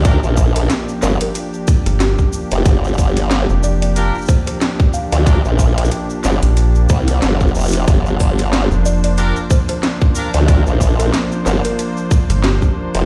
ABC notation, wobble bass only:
X:1
M:4/4
L:1/16
Q:"Swing 16ths" 1/4=92
K:Gm
V:1 name="Wobble bass" clef=bass
D,, B,,,3 z2 G,,, z8 F,,, | G,,,2 G,,,3 z8 z2 D,,- | D,, B,,,3 z2 G,,, z3 C,,2 G,,,2 F,,,2 | G,,,2 G,,,3 z8 z2 D,,- |
D,, B,,,3 z2 G,,, z8 F,,, |]